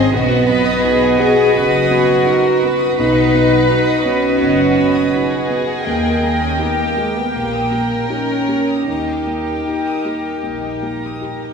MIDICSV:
0, 0, Header, 1, 10, 480
1, 0, Start_track
1, 0, Tempo, 715137
1, 79, Time_signature, 4, 2, 24, 8
1, 2958, Tempo, 730816
1, 4878, Tempo, 776197
1, 7478, End_track
2, 0, Start_track
2, 0, Title_t, "Violin section"
2, 0, Program_c, 0, 48
2, 0, Note_on_c, 0, 75, 62
2, 0, Note_on_c, 0, 84, 63
2, 73, Note_off_c, 0, 75, 0
2, 78, Note_off_c, 0, 84, 0
2, 81, Note_on_c, 0, 75, 74
2, 82, Note_off_c, 0, 75, 0
2, 82, Note_on_c, 0, 75, 77
2, 202, Note_on_c, 0, 78, 65
2, 319, Note_on_c, 0, 83, 72
2, 320, Note_off_c, 0, 78, 0
2, 439, Note_off_c, 0, 83, 0
2, 450, Note_on_c, 0, 87, 67
2, 560, Note_on_c, 0, 83, 70
2, 564, Note_off_c, 0, 87, 0
2, 679, Note_off_c, 0, 83, 0
2, 692, Note_on_c, 0, 78, 63
2, 798, Note_off_c, 0, 75, 0
2, 805, Note_off_c, 0, 78, 0
2, 806, Note_on_c, 0, 75, 64
2, 921, Note_off_c, 0, 75, 0
2, 922, Note_on_c, 0, 78, 63
2, 1039, Note_off_c, 0, 78, 0
2, 1043, Note_on_c, 0, 83, 65
2, 1150, Note_off_c, 0, 83, 0
2, 1152, Note_on_c, 0, 87, 60
2, 1273, Note_off_c, 0, 87, 0
2, 1280, Note_on_c, 0, 83, 69
2, 1396, Note_off_c, 0, 83, 0
2, 1396, Note_on_c, 0, 78, 59
2, 1515, Note_off_c, 0, 78, 0
2, 1516, Note_on_c, 0, 75, 64
2, 1635, Note_on_c, 0, 78, 55
2, 1636, Note_off_c, 0, 75, 0
2, 1754, Note_on_c, 0, 83, 55
2, 1755, Note_off_c, 0, 78, 0
2, 1875, Note_off_c, 0, 83, 0
2, 1878, Note_on_c, 0, 87, 57
2, 1995, Note_on_c, 0, 83, 63
2, 1996, Note_on_c, 0, 75, 62
2, 1997, Note_off_c, 0, 87, 0
2, 2107, Note_off_c, 0, 83, 0
2, 2116, Note_on_c, 0, 78, 58
2, 2228, Note_off_c, 0, 75, 0
2, 2236, Note_off_c, 0, 78, 0
2, 2236, Note_on_c, 0, 75, 60
2, 2351, Note_on_c, 0, 78, 55
2, 2355, Note_off_c, 0, 75, 0
2, 2473, Note_off_c, 0, 78, 0
2, 2477, Note_on_c, 0, 83, 60
2, 2595, Note_on_c, 0, 87, 60
2, 2596, Note_off_c, 0, 83, 0
2, 2703, Note_on_c, 0, 83, 57
2, 2715, Note_off_c, 0, 87, 0
2, 2830, Note_off_c, 0, 83, 0
2, 2834, Note_on_c, 0, 78, 53
2, 2957, Note_off_c, 0, 78, 0
2, 2959, Note_on_c, 0, 75, 58
2, 3070, Note_off_c, 0, 75, 0
2, 3079, Note_on_c, 0, 78, 55
2, 3196, Note_on_c, 0, 83, 61
2, 3198, Note_off_c, 0, 78, 0
2, 3309, Note_on_c, 0, 87, 53
2, 3316, Note_off_c, 0, 83, 0
2, 3432, Note_off_c, 0, 87, 0
2, 3433, Note_on_c, 0, 83, 54
2, 3553, Note_off_c, 0, 83, 0
2, 3553, Note_on_c, 0, 78, 48
2, 3673, Note_off_c, 0, 78, 0
2, 3676, Note_on_c, 0, 75, 54
2, 3789, Note_on_c, 0, 78, 55
2, 3794, Note_off_c, 0, 75, 0
2, 3909, Note_on_c, 0, 75, 61
2, 3910, Note_off_c, 0, 75, 0
2, 3910, Note_on_c, 0, 75, 56
2, 3911, Note_off_c, 0, 78, 0
2, 4026, Note_on_c, 0, 79, 47
2, 4146, Note_on_c, 0, 82, 50
2, 4149, Note_off_c, 0, 79, 0
2, 4268, Note_on_c, 0, 87, 46
2, 4270, Note_off_c, 0, 82, 0
2, 4389, Note_on_c, 0, 82, 48
2, 4391, Note_off_c, 0, 87, 0
2, 4509, Note_on_c, 0, 79, 47
2, 4512, Note_off_c, 0, 82, 0
2, 4625, Note_off_c, 0, 75, 0
2, 4633, Note_off_c, 0, 79, 0
2, 4633, Note_on_c, 0, 75, 46
2, 4756, Note_off_c, 0, 75, 0
2, 4758, Note_on_c, 0, 79, 47
2, 4879, Note_on_c, 0, 82, 42
2, 4880, Note_off_c, 0, 79, 0
2, 4986, Note_off_c, 0, 82, 0
2, 4996, Note_on_c, 0, 87, 40
2, 5110, Note_on_c, 0, 82, 46
2, 5111, Note_off_c, 0, 87, 0
2, 5223, Note_on_c, 0, 79, 43
2, 5226, Note_off_c, 0, 82, 0
2, 5343, Note_off_c, 0, 79, 0
2, 5349, Note_on_c, 0, 75, 41
2, 5465, Note_off_c, 0, 75, 0
2, 5465, Note_on_c, 0, 79, 36
2, 5584, Note_off_c, 0, 79, 0
2, 5588, Note_on_c, 0, 82, 37
2, 5707, Note_off_c, 0, 82, 0
2, 5711, Note_on_c, 0, 87, 37
2, 5830, Note_off_c, 0, 87, 0
2, 5830, Note_on_c, 0, 75, 40
2, 5833, Note_on_c, 0, 82, 44
2, 5944, Note_off_c, 0, 82, 0
2, 5953, Note_on_c, 0, 79, 39
2, 6071, Note_off_c, 0, 75, 0
2, 6073, Note_off_c, 0, 79, 0
2, 6078, Note_on_c, 0, 75, 39
2, 6196, Note_off_c, 0, 75, 0
2, 6199, Note_on_c, 0, 79, 39
2, 6318, Note_off_c, 0, 79, 0
2, 6328, Note_on_c, 0, 82, 40
2, 6443, Note_off_c, 0, 82, 0
2, 6443, Note_on_c, 0, 87, 34
2, 6561, Note_off_c, 0, 87, 0
2, 6562, Note_on_c, 0, 82, 36
2, 6681, Note_off_c, 0, 82, 0
2, 6688, Note_on_c, 0, 79, 36
2, 6803, Note_off_c, 0, 79, 0
2, 6811, Note_on_c, 0, 75, 41
2, 6917, Note_off_c, 0, 75, 0
2, 6932, Note_on_c, 0, 79, 36
2, 7046, Note_off_c, 0, 79, 0
2, 7055, Note_on_c, 0, 82, 39
2, 7167, Note_off_c, 0, 82, 0
2, 7174, Note_on_c, 0, 87, 35
2, 7286, Note_off_c, 0, 87, 0
2, 7294, Note_on_c, 0, 82, 35
2, 7406, Note_off_c, 0, 82, 0
2, 7412, Note_on_c, 0, 79, 37
2, 7478, Note_off_c, 0, 79, 0
2, 7478, End_track
3, 0, Start_track
3, 0, Title_t, "Flute"
3, 0, Program_c, 1, 73
3, 0, Note_on_c, 1, 72, 70
3, 74, Note_off_c, 1, 72, 0
3, 78, Note_on_c, 1, 75, 83
3, 1793, Note_off_c, 1, 75, 0
3, 1998, Note_on_c, 1, 75, 67
3, 3907, Note_on_c, 1, 79, 63
3, 3917, Note_off_c, 1, 75, 0
3, 5637, Note_off_c, 1, 79, 0
3, 5821, Note_on_c, 1, 79, 47
3, 7478, Note_off_c, 1, 79, 0
3, 7478, End_track
4, 0, Start_track
4, 0, Title_t, "Clarinet"
4, 0, Program_c, 2, 71
4, 0, Note_on_c, 2, 75, 80
4, 79, Note_off_c, 2, 75, 0
4, 83, Note_on_c, 2, 71, 71
4, 1971, Note_off_c, 2, 71, 0
4, 1999, Note_on_c, 2, 71, 60
4, 3797, Note_off_c, 2, 71, 0
4, 3908, Note_on_c, 2, 70, 55
4, 5613, Note_off_c, 2, 70, 0
4, 5829, Note_on_c, 2, 70, 39
4, 7478, Note_off_c, 2, 70, 0
4, 7478, End_track
5, 0, Start_track
5, 0, Title_t, "Viola section"
5, 0, Program_c, 3, 48
5, 0, Note_on_c, 3, 68, 66
5, 0, Note_on_c, 3, 75, 67
5, 80, Note_off_c, 3, 75, 0
5, 81, Note_off_c, 3, 68, 0
5, 83, Note_on_c, 3, 59, 76
5, 83, Note_on_c, 3, 66, 80
5, 1971, Note_off_c, 3, 59, 0
5, 1971, Note_off_c, 3, 66, 0
5, 1998, Note_on_c, 3, 71, 70
5, 1999, Note_on_c, 3, 66, 78
5, 3888, Note_off_c, 3, 71, 0
5, 3889, Note_off_c, 3, 66, 0
5, 3913, Note_on_c, 3, 70, 57
5, 3913, Note_on_c, 3, 79, 59
5, 5802, Note_off_c, 3, 70, 0
5, 5803, Note_off_c, 3, 79, 0
5, 5831, Note_on_c, 3, 67, 43
5, 5831, Note_on_c, 3, 70, 46
5, 7478, Note_off_c, 3, 67, 0
5, 7478, Note_off_c, 3, 70, 0
5, 7478, End_track
6, 0, Start_track
6, 0, Title_t, "Violin section"
6, 0, Program_c, 4, 48
6, 0, Note_on_c, 4, 68, 79
6, 77, Note_off_c, 4, 68, 0
6, 83, Note_on_c, 4, 66, 85
6, 321, Note_off_c, 4, 66, 0
6, 327, Note_on_c, 4, 71, 76
6, 555, Note_on_c, 4, 68, 77
6, 558, Note_off_c, 4, 71, 0
6, 797, Note_off_c, 4, 68, 0
6, 801, Note_on_c, 4, 66, 67
6, 1038, Note_off_c, 4, 66, 0
6, 1038, Note_on_c, 4, 71, 74
6, 1275, Note_off_c, 4, 71, 0
6, 1281, Note_on_c, 4, 68, 72
6, 1513, Note_off_c, 4, 68, 0
6, 1526, Note_on_c, 4, 70, 60
6, 1761, Note_off_c, 4, 70, 0
6, 1763, Note_on_c, 4, 71, 82
6, 2959, Note_on_c, 4, 66, 60
6, 2962, Note_off_c, 4, 71, 0
6, 3436, Note_off_c, 4, 66, 0
6, 3441, Note_on_c, 4, 68, 66
6, 4396, Note_off_c, 4, 68, 0
6, 4397, Note_on_c, 4, 67, 57
6, 4873, Note_off_c, 4, 67, 0
6, 4880, Note_on_c, 4, 67, 53
6, 5106, Note_off_c, 4, 67, 0
6, 5109, Note_on_c, 4, 70, 59
6, 5827, Note_off_c, 4, 70, 0
6, 5828, Note_on_c, 4, 67, 45
6, 7478, Note_off_c, 4, 67, 0
6, 7478, End_track
7, 0, Start_track
7, 0, Title_t, "Felt piano"
7, 0, Program_c, 5, 0
7, 0, Control_c, 5, 64, 127
7, 0, Note_on_c, 5, 60, 54
7, 0, Note_on_c, 5, 63, 55
7, 0, Note_on_c, 5, 68, 61
7, 88, Note_on_c, 5, 35, 62
7, 90, Control_c, 5, 64, 0
7, 93, Note_off_c, 5, 63, 0
7, 93, Note_off_c, 5, 68, 0
7, 97, Note_off_c, 5, 60, 0
7, 183, Control_c, 5, 64, 127
7, 327, Note_on_c, 5, 59, 47
7, 328, Note_on_c, 5, 66, 54
7, 540, Note_off_c, 5, 59, 0
7, 540, Note_off_c, 5, 66, 0
7, 565, Note_on_c, 5, 63, 45
7, 565, Note_on_c, 5, 66, 55
7, 778, Note_off_c, 5, 63, 0
7, 778, Note_off_c, 5, 66, 0
7, 805, Note_on_c, 5, 59, 49
7, 810, Note_on_c, 5, 66, 55
7, 1014, Note_off_c, 5, 35, 0
7, 1016, Note_off_c, 5, 59, 0
7, 1019, Note_off_c, 5, 66, 0
7, 1042, Note_on_c, 5, 42, 49
7, 1280, Note_on_c, 5, 59, 49
7, 1284, Note_on_c, 5, 66, 54
7, 1420, Note_off_c, 5, 42, 0
7, 1493, Note_off_c, 5, 59, 0
7, 1495, Note_off_c, 5, 66, 0
7, 1518, Note_on_c, 5, 63, 53
7, 1522, Note_on_c, 5, 66, 54
7, 1733, Note_off_c, 5, 63, 0
7, 1735, Note_off_c, 5, 66, 0
7, 1767, Note_on_c, 5, 59, 47
7, 1768, Note_on_c, 5, 66, 52
7, 1978, Note_off_c, 5, 59, 0
7, 1978, Note_off_c, 5, 66, 0
7, 2006, Control_c, 5, 64, 0
7, 2009, Note_on_c, 5, 35, 67
7, 2106, Control_c, 5, 64, 127
7, 2244, Note_on_c, 5, 59, 47
7, 2247, Note_on_c, 5, 66, 53
7, 2456, Note_off_c, 5, 59, 0
7, 2457, Note_off_c, 5, 66, 0
7, 2482, Note_on_c, 5, 63, 46
7, 2487, Note_on_c, 5, 66, 47
7, 2695, Note_off_c, 5, 63, 0
7, 2698, Note_off_c, 5, 66, 0
7, 2721, Note_on_c, 5, 59, 45
7, 2725, Note_on_c, 5, 66, 51
7, 2937, Note_off_c, 5, 59, 0
7, 2938, Note_off_c, 5, 35, 0
7, 2939, Note_off_c, 5, 66, 0
7, 2962, Note_on_c, 5, 59, 45
7, 3194, Note_off_c, 5, 59, 0
7, 3204, Note_on_c, 5, 59, 42
7, 3209, Note_on_c, 5, 66, 49
7, 3416, Note_off_c, 5, 59, 0
7, 3419, Note_off_c, 5, 66, 0
7, 3444, Note_on_c, 5, 63, 44
7, 3444, Note_on_c, 5, 66, 50
7, 3655, Note_off_c, 5, 63, 0
7, 3655, Note_off_c, 5, 66, 0
7, 3676, Note_on_c, 5, 59, 39
7, 3677, Note_on_c, 5, 66, 47
7, 3890, Note_off_c, 5, 59, 0
7, 3891, Note_off_c, 5, 66, 0
7, 3916, Note_on_c, 5, 39, 53
7, 3924, Control_c, 5, 64, 0
7, 4031, Control_c, 5, 64, 127
7, 4153, Note_on_c, 5, 58, 37
7, 4156, Note_on_c, 5, 79, 44
7, 4370, Note_off_c, 5, 58, 0
7, 4371, Note_off_c, 5, 79, 0
7, 4396, Note_on_c, 5, 63, 37
7, 4396, Note_on_c, 5, 67, 39
7, 4613, Note_off_c, 5, 63, 0
7, 4613, Note_off_c, 5, 67, 0
7, 4635, Note_on_c, 5, 58, 36
7, 4641, Note_on_c, 5, 67, 38
7, 4854, Note_off_c, 5, 39, 0
7, 4855, Note_off_c, 5, 58, 0
7, 4858, Note_off_c, 5, 67, 0
7, 4882, Note_on_c, 5, 46, 38
7, 5112, Note_on_c, 5, 58, 35
7, 5117, Note_on_c, 5, 67, 37
7, 5251, Note_off_c, 5, 46, 0
7, 5322, Note_off_c, 5, 58, 0
7, 5325, Note_off_c, 5, 67, 0
7, 5352, Note_on_c, 5, 63, 37
7, 5356, Note_on_c, 5, 67, 36
7, 5563, Note_off_c, 5, 63, 0
7, 5566, Note_off_c, 5, 67, 0
7, 5589, Note_on_c, 5, 58, 34
7, 5592, Note_on_c, 5, 67, 37
7, 5806, Note_off_c, 5, 58, 0
7, 5808, Note_off_c, 5, 67, 0
7, 5834, Note_on_c, 5, 39, 35
7, 5841, Control_c, 5, 64, 0
7, 5940, Control_c, 5, 64, 127
7, 6078, Note_on_c, 5, 58, 28
7, 6082, Note_on_c, 5, 67, 30
7, 6294, Note_off_c, 5, 58, 0
7, 6296, Note_off_c, 5, 67, 0
7, 6320, Note_on_c, 5, 63, 28
7, 6321, Note_on_c, 5, 67, 32
7, 6536, Note_off_c, 5, 63, 0
7, 6537, Note_off_c, 5, 67, 0
7, 6560, Note_on_c, 5, 58, 32
7, 6563, Note_on_c, 5, 67, 33
7, 6776, Note_off_c, 5, 58, 0
7, 6777, Note_off_c, 5, 39, 0
7, 6778, Note_off_c, 5, 67, 0
7, 6795, Note_on_c, 5, 58, 28
7, 7031, Note_off_c, 5, 58, 0
7, 7040, Note_on_c, 5, 58, 27
7, 7041, Note_on_c, 5, 67, 34
7, 7255, Note_off_c, 5, 58, 0
7, 7256, Note_off_c, 5, 67, 0
7, 7278, Note_on_c, 5, 63, 30
7, 7279, Note_on_c, 5, 67, 31
7, 7478, Note_off_c, 5, 63, 0
7, 7478, Note_off_c, 5, 67, 0
7, 7478, End_track
8, 0, Start_track
8, 0, Title_t, "Cello section"
8, 0, Program_c, 6, 48
8, 0, Note_on_c, 6, 60, 79
8, 80, Note_off_c, 6, 60, 0
8, 84, Note_on_c, 6, 59, 92
8, 801, Note_off_c, 6, 59, 0
8, 804, Note_on_c, 6, 68, 81
8, 1039, Note_off_c, 6, 68, 0
8, 1039, Note_on_c, 6, 66, 76
8, 1997, Note_off_c, 6, 66, 0
8, 2000, Note_on_c, 6, 63, 73
8, 2467, Note_off_c, 6, 63, 0
8, 2476, Note_on_c, 6, 63, 68
8, 2711, Note_off_c, 6, 63, 0
8, 2717, Note_on_c, 6, 61, 69
8, 3675, Note_off_c, 6, 61, 0
8, 3915, Note_on_c, 6, 58, 67
8, 4249, Note_off_c, 6, 58, 0
8, 4276, Note_on_c, 6, 61, 60
8, 4394, Note_on_c, 6, 59, 54
8, 4395, Note_off_c, 6, 61, 0
8, 4515, Note_off_c, 6, 59, 0
8, 4517, Note_on_c, 6, 58, 57
8, 4636, Note_on_c, 6, 56, 56
8, 4637, Note_off_c, 6, 58, 0
8, 4757, Note_on_c, 6, 59, 52
8, 4758, Note_off_c, 6, 56, 0
8, 4879, Note_off_c, 6, 59, 0
8, 4880, Note_on_c, 6, 58, 53
8, 5339, Note_on_c, 6, 61, 56
8, 5345, Note_off_c, 6, 58, 0
8, 5825, Note_off_c, 6, 61, 0
8, 5825, Note_on_c, 6, 63, 41
8, 7478, Note_off_c, 6, 63, 0
8, 7478, End_track
9, 0, Start_track
9, 0, Title_t, "French horn section"
9, 0, Program_c, 7, 60
9, 0, Note_on_c, 7, 60, 92
9, 84, Note_off_c, 7, 60, 0
9, 85, Note_on_c, 7, 59, 104
9, 787, Note_off_c, 7, 59, 0
9, 802, Note_on_c, 7, 68, 105
9, 1037, Note_on_c, 7, 66, 102
9, 1038, Note_off_c, 7, 68, 0
9, 1886, Note_off_c, 7, 66, 0
9, 2000, Note_on_c, 7, 63, 92
9, 2467, Note_off_c, 7, 63, 0
9, 2477, Note_on_c, 7, 63, 74
9, 2712, Note_off_c, 7, 63, 0
9, 2715, Note_on_c, 7, 61, 89
9, 3674, Note_off_c, 7, 61, 0
9, 3913, Note_on_c, 7, 58, 72
9, 4248, Note_off_c, 7, 58, 0
9, 4284, Note_on_c, 7, 61, 70
9, 4398, Note_on_c, 7, 59, 64
9, 4399, Note_off_c, 7, 61, 0
9, 4514, Note_off_c, 7, 59, 0
9, 4526, Note_on_c, 7, 58, 65
9, 4642, Note_off_c, 7, 58, 0
9, 4644, Note_on_c, 7, 56, 60
9, 4761, Note_off_c, 7, 56, 0
9, 4767, Note_on_c, 7, 59, 60
9, 4884, Note_off_c, 7, 59, 0
9, 4888, Note_on_c, 7, 58, 68
9, 5348, Note_on_c, 7, 61, 67
9, 5349, Note_off_c, 7, 58, 0
9, 5824, Note_on_c, 7, 63, 52
9, 5829, Note_off_c, 7, 61, 0
9, 7478, Note_off_c, 7, 63, 0
9, 7478, End_track
10, 0, Start_track
10, 0, Title_t, "Double bass section"
10, 0, Program_c, 8, 48
10, 84, Note_on_c, 8, 35, 81
10, 481, Note_off_c, 8, 35, 0
10, 1041, Note_on_c, 8, 30, 73
10, 1436, Note_off_c, 8, 30, 0
10, 2002, Note_on_c, 8, 35, 69
10, 2398, Note_off_c, 8, 35, 0
10, 2960, Note_on_c, 8, 30, 68
10, 3357, Note_off_c, 8, 30, 0
10, 3911, Note_on_c, 8, 39, 66
10, 4312, Note_off_c, 8, 39, 0
10, 4878, Note_on_c, 8, 34, 56
10, 5265, Note_off_c, 8, 34, 0
10, 5824, Note_on_c, 8, 39, 49
10, 6232, Note_off_c, 8, 39, 0
10, 6795, Note_on_c, 8, 34, 39
10, 7197, Note_off_c, 8, 34, 0
10, 7478, End_track
0, 0, End_of_file